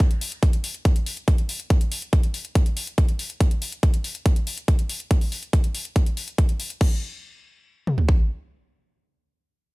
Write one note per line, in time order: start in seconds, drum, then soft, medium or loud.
0.00 kick loud
0.00 closed hi-hat medium
0.11 closed hi-hat soft
0.21 open hi-hat loud
0.32 closed hi-hat soft
0.43 kick loud
0.43 closed hi-hat medium
0.53 closed hi-hat soft
0.64 open hi-hat loud
0.75 closed hi-hat soft
0.85 kick loud
0.85 closed hi-hat medium
0.96 closed hi-hat medium
1.06 open hi-hat loud
1.17 closed hi-hat soft
1.28 kick loud
1.28 closed hi-hat medium
1.38 closed hi-hat medium
1.49 open hi-hat loud
1.60 closed hi-hat soft
1.70 kick loud
1.70 closed hi-hat medium
1.81 closed hi-hat medium
1.92 open hi-hat loud
2.02 closed hi-hat medium
2.13 kick loud
2.13 closed hi-hat medium
2.23 closed hi-hat medium
2.34 open hi-hat loud
2.45 closed hi-hat soft
2.55 kick loud
2.55 closed hi-hat medium
2.66 closed hi-hat medium
2.77 open hi-hat loud
2.87 closed hi-hat medium
2.98 kick loud
2.98 closed hi-hat medium
3.09 closed hi-hat medium
3.19 open hi-hat loud
3.30 closed hi-hat soft
3.40 kick loud
3.40 closed hi-hat medium
3.51 closed hi-hat medium
3.62 open hi-hat loud
3.72 closed hi-hat soft
3.83 kick loud
3.83 closed hi-hat medium
3.94 closed hi-hat medium
4.04 open hi-hat loud
4.15 closed hi-hat medium
4.26 kick loud
4.26 closed hi-hat medium
4.36 closed hi-hat medium
4.47 open hi-hat loud
4.58 closed hi-hat medium
4.68 kick loud
4.68 closed hi-hat medium
4.79 closed hi-hat medium
4.89 open hi-hat loud
5.00 closed hi-hat soft
5.11 kick loud
5.11 closed hi-hat medium
5.21 open hi-hat medium
5.32 open hi-hat loud
5.43 closed hi-hat medium
5.53 kick loud
5.53 closed hi-hat medium
5.64 closed hi-hat medium
5.75 open hi-hat loud
5.85 closed hi-hat medium
5.96 kick loud
5.96 closed hi-hat medium
6.06 closed hi-hat medium
6.17 open hi-hat loud
6.28 closed hi-hat medium
6.38 kick loud
6.38 closed hi-hat medium
6.49 closed hi-hat medium
6.60 open hi-hat loud
6.70 closed hi-hat medium
6.81 kick loud
6.81 crash medium
7.87 mid tom medium
7.98 floor tom medium
8.09 kick medium